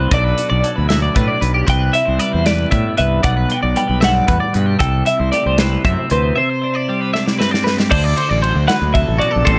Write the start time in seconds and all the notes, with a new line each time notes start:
Already playing: C3 G4 B4 C5
0.11 B1 B2 F#3 D4 F#4 A4 D5, kick, closed hi-hat
0.24 B4
0.38 F#4, closed hi-hat
0.50 B1 D5
0.63 F#3 A4, closed hi-hat
0.76 D2 B4
0.89 F#4 E5, snare, closed hi-hat
1.02 D5
1.16 A2 B2 D4 B4, kick, closed hi-hat
1.28 D5
1.41 B1 B4, closed hi-hat
1.54 G4
1.67 C2 C3 B4 G5, kick, closed hi-hat
1.93 E4 E5, closed hi-hat
2.06 C2 C5
2.19 G3 B4 D5, closed hi-hat
2.33 E2 C5
2.45 E4 B4 D5, snare, closed hi-hat
2.71 G2 A2 B3 E5, kick, closed hi-hat
2.98 C2 B4 E5, closed hi-hat
3.23 B1 B2 D5 F#5, kick, closed hi-hat
3.37 B4
3.50 F#4 G5, closed hi-hat
3.63 B1 D5
3.76 G3 B4 G5, closed hi-hat
3.88 B1 B4
4.01 G2 E5 F#5, snare, closed hi-hat
4.15 D5
4.28 E2 A2 B4, kick, closed hi-hat
4.40 D5
4.54 G2 B2 B4, closed hi-hat
4.66 G4
4.79 C2 C3 A4 G5, kick, closed hi-hat
5.06 E4 E5, closed hi-hat
5.20 C2 C5
5.32 A3 G4 D5, closed hi-hat
5.46 C2 C5
5.58 E4 B4 C5, snare, closed hi-hat
5.85 F#2 C3 C4 E5, kick, closed hi-hat
6.10 D2 B4 C5, closed hi-hat
6.36 C3 C5 E5
6.50 C5
6.64 D4
6.74 E4 D5
6.89 G3 G4
7.01 B4
7.14 D4 E5, snare
7.26 E4 D5, snare
7.39 G2 C4 B4, snare
7.51 D5, snare
7.64 B4, snare
7.78 G4, snare
7.91 D2 D3 A4 C5 D5, kick, crash
8.04 D5
8.16 F#4 C5, ride
8.30 A1 D5
8.42 F#3 C5, ride
8.55 D2
8.67 D3 B4 F#5, snare, ride
8.82 D2
8.94 C3 A4 E5, kick, ride
9.09 A1
9.18 B2 F#4 D5, ride
9.31 A4
9.36 A#1
9.45 A1 A2 A3 A4 C5, kick, ride
9.49 C4 E4 G4